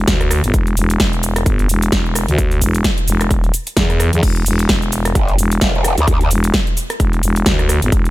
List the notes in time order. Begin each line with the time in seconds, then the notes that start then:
0.08 D2, kick, snare, closed hi-hat, shaker
0.21 cross-stick, closed hi-hat, shaker
0.31 cross-stick, open hi-hat, shaker
0.44 G1, closed hi-hat, shaker
0.54 E1, kick, closed hi-hat, shaker
0.67 closed hi-hat, shaker
0.77 E1, open hi-hat, shaker
0.90 closed hi-hat, shaker
1.00 E1, kick, snare, closed hi-hat, shaker
1.13 closed hi-hat, shaker
1.23 open hi-hat, shaker
1.36 cross-stick, closed hi-hat, shaker
1.46 G1, kick, closed hi-hat, shaker
1.59 closed hi-hat, shaker
1.69 E1, open hi-hat, shaker
1.82 closed hi-hat, shaker
1.92 E1, kick, snare, closed hi-hat, shaker
2.06 shaker
2.15 cross-stick, open hi-hat, shaker
2.28 D2, closed hi-hat, shaker
2.38 kick, closed hi-hat, shaker
2.51 closed hi-hat, shaker
2.61 E1, kick, open hi-hat, shaker
2.75 closed hi-hat, shaker
2.84 kick, snare, closed hi-hat, shaker
2.98 closed hi-hat, shaker
3.08 E1, open hi-hat, shaker
3.21 cross-stick, closed hi-hat, shaker
3.31 kick, closed hi-hat, shaker
3.44 closed hi-hat, shaker
3.54 open hi-hat, shaker
3.67 closed hi-hat, shaker
3.77 E2, kick, snare, closed hi-hat, shaker
3.90 cross-stick, closed hi-hat, shaker
4.00 cross-stick, open hi-hat, shaker
4.13 E2, closed hi-hat, shaker
4.23 E1, kick, closed hi-hat, crash, shaker
4.36 closed hi-hat, shaker
4.46 E1, open hi-hat, shaker
4.59 closed hi-hat, shaker
4.69 E1, kick, snare, closed hi-hat, shaker
4.82 closed hi-hat, shaker
4.92 open hi-hat, shaker
5.05 cross-stick, closed hi-hat, shaker
5.15 G1, kick, closed hi-hat, shaker
5.28 closed hi-hat, shaker
5.38 E1, open hi-hat, shaker
5.52 closed hi-hat, shaker
5.61 E1, kick, snare, closed hi-hat, shaker
5.75 shaker
5.84 cross-stick, open hi-hat, shaker
5.98 D2, closed hi-hat, shaker
6.08 kick, closed hi-hat, shaker
6.21 closed hi-hat, shaker
6.31 E1, open hi-hat, shaker
6.44 closed hi-hat, shaker
6.54 kick, snare, closed hi-hat, shaker
6.67 closed hi-hat, shaker
6.77 open hi-hat, shaker
6.90 cross-stick, closed hi-hat, shaker
7.00 E1, kick, closed hi-hat, shaker
7.13 closed hi-hat, shaker
7.23 E1, open hi-hat, shaker
7.36 closed hi-hat, shaker
7.46 D2, kick, snare, closed hi-hat, shaker
7.59 cross-stick, closed hi-hat, shaker
7.69 cross-stick, open hi-hat, shaker
7.82 G1, closed hi-hat, shaker
7.92 E1, kick, closed hi-hat, shaker
8.05 closed hi-hat, shaker